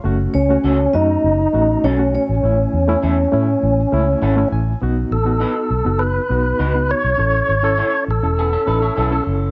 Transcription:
<<
  \new Staff \with { instrumentName = "Vibraphone" } { \time 4/4 \key b \mixolydian \tempo 4 = 101 r8 cis''4 dis''4. cis''8 cis''8~ | cis''2.~ cis''8 r8 | r1 | r1 | }
  \new Staff \with { instrumentName = "Clean electric guitar" } { \time 4/4 \key b \mixolydian r1 | r1 | r1 | r2 <b gis'>16 <cis' a'>16 <dis' b'>16 <e' cis''>16 <b gis'>16 <cis' a'>8. | }
  \new Staff \with { instrumentName = "Tonewheel organ" } { \time 4/4 \key b \mixolydian r8 cis'4 dis'4. cis'8 cis'8~ | cis'2.~ cis'8 r8 | r8 a'4. b'4. cis''8~ | cis''4. a'2 r8 | }
  \new Staff \with { instrumentName = "Clean electric guitar" } { \time 4/4 \key b \mixolydian r4 <cis' fis' a'>8 r4. <cis' fis' a'>8 r8 | r4 <cis' e' a'>8 r4. <cis' e' a'>8 r8 | r4 <dis' fis' b'>8 r4. <dis' fis' b'>8 r8 | r4 <cis' e' a'>8 r4. <cis' e' a'>8 r8 | }
  \new Staff \with { instrumentName = "Reed electric piano" } { \time 4/4 \key b \mixolydian << { r1 | r2. fis''8 gis''8 | r1 | r1 | } \\ { <a cis' fis'>8 r16 <a cis' fis'>8 r16 <a cis' fis'>8. r16 <a cis' fis'>8 r16 <a cis' fis'>8 r16 | <a cis' e'>8 r16 <a cis' e'>8 r16 <a cis' e'>8. r16 <a cis' e'>8 r16 <a cis' e'>8 r16 | <b dis' fis'>8 r16 <b dis' fis'>8. r16 <b dis' fis'>8 r16 <b dis' fis'>8 r16 <b dis' fis'>8 r16 | <cis' e' a'>8 r16 <cis' e' a'>8. r16 <cis' e' a'>8 r16 <cis' e' a'>8 r16 <cis' e' a'>8 r16 | } >> }
  \new Staff \with { instrumentName = "Fingered electric bass" } { \clef bass \time 4/4 \key b \mixolydian fis,,8 cis,8 cis,8 fis,8 fis,,8 a,,8 b,,8. a,,16 | a,,8 e,8 e,8 a,8 a,,8 cis,8 gis,,8 a,,8 | b,,8 a,,8. r16 b,,16 fis,,8. b,,8 cis,8. b,,16 | a,,8 gis,,8. r16 a,,16 e,,8. a,,8 b,,8 fis,,8 | }
>>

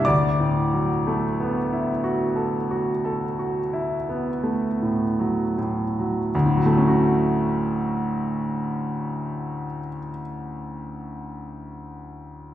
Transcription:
\new Staff \with { instrumentName = "Grand piano" } { \time 9/8 \key d \major \tempo 4. = 29 << { <d'' d'''>1 r8 | <d, a, fis a cis' fis'>1~ <d, a, fis a cis' fis'>8 | } \\ { d,16 a,16 fis16 a16 b16 e'16 fis'16 a'16 fis'16 a'16 fis'16 e'16 b16 a16 a,16 fis16 a,16 fis16 | r1 r8 | } >> }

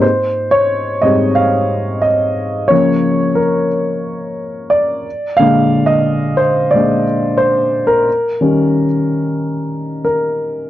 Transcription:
<<
  \new Staff \with { instrumentName = "Grand piano" } { \time 4/4 \key aes \major \tempo 4 = 90 c''8. des''8. ees''8 f''4 ees''4 | des''4 bes'2 d''4 | f''8. ees''8. c''8 d''4 c''8. bes'16~ | bes'2. bes'4 | }
  \new Staff \with { instrumentName = "Grand piano" } { \clef bass \time 4/4 \key aes \major r4. <aes, g c'>4. r4 | <des f bes>4. r2 r8 | <bes, d aes>4. r8 <bes, aes d'>8 r4. | r8 <ees g des'>8 r2. | }
>>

